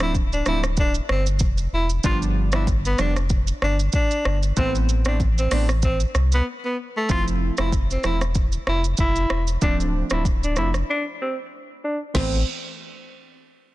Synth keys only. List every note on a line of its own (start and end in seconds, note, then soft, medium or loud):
0.00 0.15 F3 medium
0.00 0.15 A3 medium
0.00 0.15 C4 medium
0.00 0.15 D4 medium
0.46 0.64 F3 medium
0.46 0.64 A3 medium
0.46 0.64 C4 medium
0.46 0.64 D4 medium
2.04 2.49 F3 loud
2.04 2.49 G3 medium
2.04 2.49 B3 medium
2.04 2.49 D4 loud
2.53 2.68 F3 medium
2.53 2.68 G3 medium
2.53 2.68 B3 medium
2.53 2.68 D4 medium
2.99 3.17 F3 medium
2.99 3.17 G3 medium
2.99 3.17 B3 medium
2.99 3.17 D4 medium
4.57 5.02 E3 medium
4.57 5.02 A3 medium
4.57 5.02 B3 medium
4.57 5.02 C4 loud
5.05 5.20 E3 medium
5.05 5.21 A3 medium
5.05 5.21 B3 medium
5.05 5.21 C4 medium
5.51 5.69 E3 medium
5.51 5.69 A3 medium
5.51 5.70 B3 medium
5.51 5.70 C4 medium
7.09 7.54 F3 medium
7.09 7.54 A3 medium
7.09 7.54 C4 medium
7.09 7.54 E4 loud
7.58 7.73 F3 medium
7.58 7.73 A3 medium
7.58 7.73 C4 medium
7.58 7.73 E4 medium
8.04 8.22 F3 medium
8.04 8.22 A3 medium
8.04 8.22 C4 medium
8.04 8.22 E4 medium
9.62 10.07 F3 medium
9.62 10.07 A3 medium
9.62 10.07 C4 medium
9.62 10.07 D4 loud
10.10 10.26 F3 medium
10.10 10.26 A3 medium
10.10 10.26 C4 medium
10.10 10.26 D4 medium
10.56 10.74 F3 medium
10.56 10.75 A3 medium
10.56 10.75 C4 medium
10.56 10.75 D4 medium
12.14 12.38 E3 medium
12.14 12.39 A3 medium
12.14 12.39 B3 medium
12.14 12.39 C4 medium